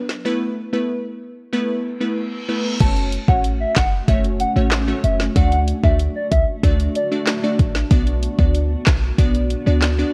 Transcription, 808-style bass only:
2.80 F#1
3.28 A1
3.76 F#1
4.08 F#1
4.56 A1
5.04 F#1
5.36 D2
5.83 D2
6.32 C#2
6.63 D2
7.59 A1
7.91 B1
8.39 D2
8.87 B1
9.19 B1
9.67 D2

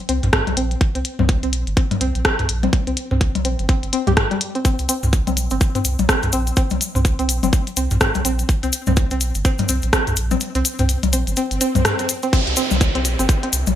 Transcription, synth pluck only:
0.09 C4
0.33 C4
0.57 C4
0.95 C4
1.19 C4
1.43 C4
1.77 C4
2.01 C4
2.25 C4
2.63 C4
2.87 C4
3.11 C4
3.45 C4
3.69 C4
3.93 C4
4.07 G4
4.31 G3
4.55 C4
4.65 C4
4.89 C4
5.27 C4
5.51 C4
5.75 C4
6.09 C4
6.33 C4
6.57 C4
6.95 C4
7.19 C4
7.43 C4
7.77 C4
8.01 C4
8.25 C4
8.63 C4
8.87 C4
9.11 C4
9.45 C4
9.69 C4
9.93 C4
10.31 C4
10.55 C4
10.79 C4
11.13 C4
11.37 C4
11.61 C4
11.99 C4
12.23 C4
12.33 C4
12.57 C4
12.95 C4
13.19 C4
13.43 C4

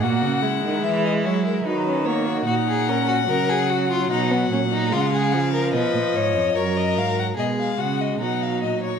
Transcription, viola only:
0.01 A#3
0.43 G#3
1.66 F#3
2.06 A#3
2.48 D#4
2.90 C#4
3.30 F#3
4.92 G#3
5.34 F3
6.55 F#3
7.39 G#3
8.21 F#3

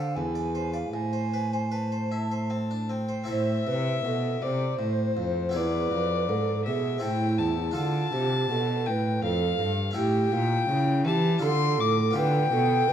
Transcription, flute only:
Already playing: F5
0.16 G#5
0.74 F5
0.93 G#5
1.72 A5
3.30 C5
3.68 B4
4.06 A4
4.44 C5
5.56 B4
6.30 A4
6.67 G#4
7.03 E4
7.77 F4
8.13 G4
8.52 A4
8.89 B4
9.25 A4
9.96 G4
10.33 F4
10.70 E4
11.06 G4
11.42 A4
12.16 B4
12.52 A4
12.89 B4

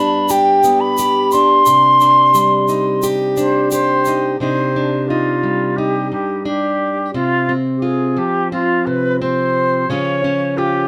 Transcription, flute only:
Already playing: B5
0.30 G5
0.80 B5
1.32 C6
3.37 C5
3.71 C5
4.40 C5
5.08 F4
5.76 G4
6.12 G4
6.46 G4
7.14 F4
7.76 G4
7.83 G#4
8.18 G4
8.52 F4
8.86 B4
9.20 C5
9.89 C#5
10.57 G4

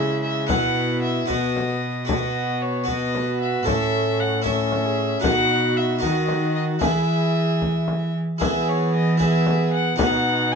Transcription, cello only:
Already playing: C#3
0.50 B2
1.30 B2
3.67 A2
5.24 B2
6.03 D#3
6.82 E3
8.42 E3
9.98 B2

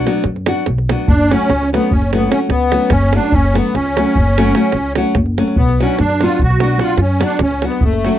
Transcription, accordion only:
1.08 D4
1.30 C#4
1.73 B3
1.91 C#4
2.13 B3
2.31 C#4
2.50 B3
2.91 C#4
3.15 D4
3.33 C#4
3.55 B3
3.75 C#4
5.57 B3
5.81 C#4
6.00 D4
6.23 F4
6.43 F#4
6.83 F4
7.01 C#4
7.24 D4
7.43 C#4
7.66 B3
7.84 A3

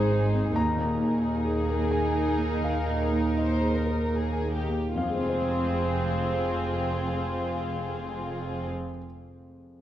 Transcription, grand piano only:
Already playing: G#2 D#3 C4 D#4 G#4 C5 C6 D#6
0.12 D#4
0.33 C4
0.55 D#2 A#5
0.76 A#2
0.99 A#3
1.21 D#4
1.45 G#4
1.68 A#4
1.91 G#4 G#5
2.14 D#4
2.38 A#3
2.61 D#2 F5
2.86 A#2
3.10 A#3
3.34 D#4 D#5
3.61 G#4
3.87 A#4
4.13 G#4
4.41 D#4
4.68 A#3
4.95 F2 F5
5.02 F3
5.09 G#3
5.16 C4
5.23 G#4
5.30 C5

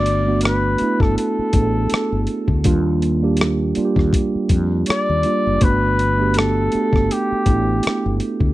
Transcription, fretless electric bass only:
Already playing: G1
0.81 muted fretless electric bass stroke
1.01 G1
1.39 muted fretless electric bass stroke
1.54 A1
1.92 muted fretless electric bass stroke
2.12 G1
2.49 D2
2.66 D#2
3.77 muted fretless electric bass stroke
3.97 D#2
4.35 muted fretless electric bass stroke
4.50 F2
4.89 muted fretless electric bass stroke
5.10 D#2
5.47 F#1
5.62 G1
6.75 muted fretless electric bass stroke
6.94 G1
7.32 muted fretless electric bass stroke
7.47 A1
7.86 muted fretless electric bass stroke
8.06 G1
8.41 D2

